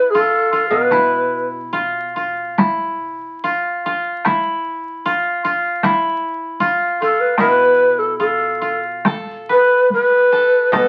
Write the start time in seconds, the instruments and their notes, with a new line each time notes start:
Already playing: koto E4, shakuhachi B4
0.10 shakuhachi A4
0.15 koto F4
0.53 koto F4
0.69 koto B2, shakuhachi B4
0.91 koto E4, taiko rim, taiko high
1.73 koto F4
2.16 koto F4
2.58 koto E4, taiko rim, taiko high
3.44 koto F4
3.86 koto F4
4.25 koto E4, taiko rim, taiko high
5.06 koto F4
5.45 koto F4
5.83 koto E4, taiko rim, taiko high
6.60 koto F4, taiko high
7.02 koto F4, shakuhachi A4
7.20 shakuhachi B4
7.38 koto B2 E4, shakuhachi B4, taiko rim, taiko high
7.99 shakuhachi A4
8.19 koto F4, shakuhachi A4
8.62 koto F4
9.05 koto A4, taiko rim, taiko high
9.49 koto B4, shakuhachi B4
9.90 shakuhachi B4, taiko high
10.32 koto A4
10.72 koto B2 A4, shakuhachi B4, taiko rim, taiko high